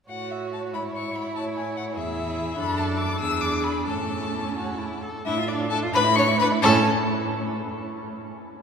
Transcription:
0.09 cello A2, viola F#4, violin C#5 F#5
0.31 violin E5
0.53 violin A5
0.73 cello G#2, viola E4, violin B5
0.96 violin C#6
1.16 violin B5
1.36 cello A2, violin C#5 A5
1.56 violin G#5
1.77 violin F#5
1.95 cello E2, viola E4, violin G#4 E5
2.56 cello F#2, viola D4, violin A4 B5
2.77 violin A5
2.98 violin D6
3.19 cello E2, viola D4, violin G#4 E6
3.41 violin D6
3.63 violin B5
3.86 cello A2, viola C#4, violin A4 A5
4.56 violin F#4
4.78 violin E4
5.02 violin A4
5.25 cello A2, viola D4, violin E4 E5
5.37 viola F4
5.48 viola D4, violin D4 D5
5.60 viola F4
5.70 viola D4, violin A4 A5
5.83 viola F4
5.93 cello A2, viola D4, violin B4 B5
6.04 viola E4
6.15 viola D4, violin C#5 C#6
6.28 viola E4
6.39 viola D4, violin B4 B5
6.52 viola E4
6.62 cello A2, viola C#4, violin A4 A5

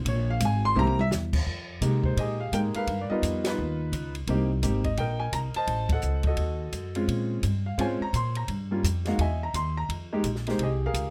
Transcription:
0.05 upright bass A#1, grand piano C#5, kick, ride
0.30 grand piano F5
0.40 upright bass G#1, kick, hi-hat pedal, ride
0.45 grand piano G#5
0.65 grand piano C6
0.75 upright bass C2, grand piano A#3 C4 E4 G4 A#5, high tom
0.87 high tom
0.99 grand piano E5, high tom
1.11 upright bass E2, snare, hi-hat pedal
1.33 kick, crash
1.46 upright bass F2, kick
1.81 upright bass C3, grand piano G#3 A#3 D#4 G4, kick, hi-hat pedal, ride
2.04 grand piano C5, kick
2.17 upright bass A#2, grand piano G#4 D#5, kick, ride
2.21 grand piano G4
2.40 grand piano F5
2.52 upright bass G#2, grand piano G#3 A#3 D#4 A#4 G5, kick, hi-hat pedal, ride
2.74 grand piano A#4 B4 F5, muted upright bass stroke, ride
2.87 upright bass G2, kick, ride
3.01 grand piano D5
3.10 grand piano G3 B3 D#4 F4 A#4 B4 D#5, muted upright bass stroke
3.22 upright bass F2, kick, hi-hat pedal, ride
3.44 grand piano B4, snare, ride
3.49 grand piano D#4 F4
3.58 upright bass D#2
3.92 upright bass C#2, kick, hi-hat pedal, ride
4.15 ride
4.27 upright bass C2, grand piano A#3 C4 D#4 G4, kick, ride
4.62 upright bass G#1, grand piano A#3 C4 D#4 G4, kick, hi-hat pedal, ride
4.84 grand piano D#5, kick, ride
4.97 upright bass A#1, grand piano A#4 D#5 G5, kick, ride
5.20 grand piano G#5
5.32 upright bass C2, grand piano A#5, kick, hi-hat pedal, ride
5.54 grand piano C5 D#5 A5, muted upright bass stroke, ride
5.67 upright bass A1, kick, ride
5.89 grand piano F#5, kick, ride
5.94 grand piano A4 D#5
6.02 upright bass C#2, hi-hat pedal
6.23 kick, ride
6.27 grand piano F#4 A4 D#5
6.37 upright bass D#2, kick, ride
6.72 upright bass F#2, kick, hi-hat pedal, ride
6.95 grand piano G#3 C4 C#4 F4, ride
7.08 upright bass A#2, kick, ride
7.43 upright bass G2, kick, hi-hat pedal, ride
7.66 grand piano F5
7.78 upright bass G#2, grand piano G#3 C4 C#4 F4 C5 C#5 G#5, kick, ride
8.00 grand piano A#5, muted upright bass stroke
8.13 upright bass A#2, grand piano C6, kick, hi-hat pedal, ride
8.35 grand piano A#5, ride
8.48 upright bass G2, kick, ride
8.71 grand piano G3 A#3 C#4 F4
8.83 upright bass F2, kick, hi-hat pedal, ride
9.05 grand piano G#3 A#3 D#4 F#4 F5, snare, ride
9.18 upright bass E2, grand piano D#5 E5 G#5, kick, ride
9.43 grand piano A#5
9.54 upright bass D#2, grand piano C6, kick, hi-hat pedal, ride
9.77 grand piano A#5
9.89 upright bass F2, kick, ride
10.13 grand piano G#3 A#3 D#4 G4
10.23 upright bass A#1, kick, hi-hat pedal, ride
10.36 snare
10.47 grand piano G#3 A#3 D#4 G4, snare, ride
10.51 grand piano C5
10.59 upright bass C2, kick, ride
10.63 grand piano G4 G#4 D#5
10.86 grand piano G#4 A#4 F5
10.94 upright bass C#2, kick, hi-hat pedal, ride

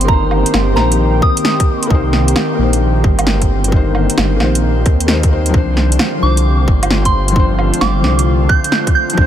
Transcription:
Already playing: detuned saw bass G1, analog synth pad D#3 A#3 C4 G4 C5, felt piano A#3 D#4 C5, synth texture C4 C5
0.01 felt piano A#3, closed hi-hat
0.08 felt piano D#4, synth bell A#5, kick
0.13 felt piano C5
0.31 low woodblock
0.46 closed hi-hat
0.54 detuned saw bass G1, snare, low woodblock
0.73 felt piano A#3 D#4, synth bell A#5, snare
0.77 detuned saw bass A#1, felt piano C5
0.92 closed hi-hat
1.22 synth bell D#6, kick
1.37 closed hi-hat
1.45 snare
1.60 kick, closed hi-hat
1.83 felt piano A#3, closed hi-hat
1.90 detuned saw bass C2, felt piano D#4 C5, kick
2.13 snare
2.28 closed hi-hat
2.36 snare, low woodblock
2.55 detuned saw bass A#1, felt piano A#3
2.59 felt piano D#4
2.63 felt piano C5
2.73 closed hi-hat
3.04 detuned saw bass G1, kick
3.19 closed hi-hat, low woodblock
3.27 snare
3.42 kick, closed hi-hat
3.64 felt piano A#3, closed hi-hat
3.72 felt piano D#4, kick
3.76 felt piano C5
3.95 low woodblock
4.10 closed hi-hat
4.18 detuned saw bass G1, snare, low woodblock
4.36 detuned saw bass A#1, felt piano A#3 D#4, snare, low woodblock
4.44 felt piano C5
4.55 closed hi-hat
4.86 detuned saw bass D#2, kick, closed hi-hat
5.00 closed hi-hat
5.06 felt piano A#3 D#4, snare
5.11 felt piano C5
5.23 kick, closed hi-hat
5.29 detuned saw bass D#2, felt piano A#3 D#4 C5
5.46 felt piano F3, closed hi-hat
5.54 detuned saw bass C2, analog synth pad D3, felt piano D4 C5, kick
5.73 analog synth pad A3 F4, snare
5.92 closed hi-hat
5.99 snare, low woodblock
6.15 felt piano F3, analog synth pad C4
6.22 detuned saw bass C2, felt piano D4, synth bell D6
6.26 felt piano C5
6.37 analog synth pad C5, closed hi-hat
6.68 detuned saw bass G1, kick
6.83 closed hi-hat, low woodblock
6.91 snare
7.05 synth bell C6, kick, closed hi-hat
7.28 felt piano F3, closed hi-hat
7.36 felt piano D4 C5, kick
7.59 low woodblock
7.74 closed hi-hat
7.81 detuned saw bass G1, synth bell D6, snare, low woodblock
8.00 felt piano F3 D4
8.04 detuned saw bass C2, felt piano C5, snare
8.19 closed hi-hat
8.49 synth bell G6, kick
8.64 closed hi-hat
8.72 snare
8.87 kick, closed hi-hat
8.95 synth bell G6
9.10 felt piano F3, closed hi-hat
9.17 detuned saw bass C2, felt piano D4, kick
9.21 felt piano C5

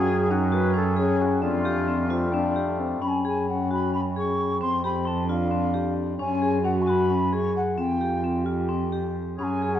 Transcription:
Already playing: cello F#2, harmonium F#3 C#4 G#4, french horn F#4, flute G#4
0.07 vibraphone G#4
0.29 vibraphone C#4, french horn D#4, flute F#4, glockenspiel G#5
0.52 vibraphone F#4, flute B4
0.74 vibraphone C#4, flute A4
0.96 french horn C#4, vibraphone G#4, flute G#4
1.21 flute F#4
1.25 flute E4
1.31 flute F#4
1.40 cello F2, harmonium G3 A3 F4, vibraphone C4, french horn D4, flute F4
1.65 vibraphone G4
1.88 vibraphone C4
2.09 french horn C4, vibraphone F4
2.32 vibraphone C4, french horn D4, glockenspiel G5
2.56 vibraphone G4
2.80 french horn C4
3.02 cello F#2, vibraphone C#4, french horn C#4, glockenspiel B5, flute B5
3.07 flute G#5
3.25 vibraphone G#4, flute G#5
3.48 vibraphone C#4, flute F#5
3.71 vibraphone F#4, flute B5
3.94 vibraphone C#4, flute B5
4.16 vibraphone G#4, flute C#6
4.60 cello F2, french horn C4, vibraphone C4, flute C6
4.84 vibraphone G4, flute B5
5.05 vibraphone C4, flute A5, glockenspiel C6
5.29 french horn D4, vibraphone F4, flute F5
5.51 vibraphone C4
5.74 vibraphone G4
6.18 cello F#2, french horn C#4, vibraphone C#4, flute G#5
6.42 vibraphone G#4
6.63 vibraphone C#4, french horn F#4, flute F#5
6.81 flute C#6
6.86 vibraphone F#4, glockenspiel G#5, flute B5
7.10 vibraphone C#4
7.33 vibraphone G#4, flute C#6
7.56 flute F#5
7.77 cello F2, vibraphone C4, french horn F4, flute G5
8.01 vibraphone G4
8.24 vibraphone C4
8.45 vibraphone F4, french horn G4
8.69 vibraphone C4, glockenspiel C6
8.92 vibraphone G4
9.37 cello F#2, harmonium F#3 C#4 G#4, vibraphone C#4, french horn G#4, flute B5
9.43 flute G#5
9.62 vibraphone G#4
9.74 flute F#5

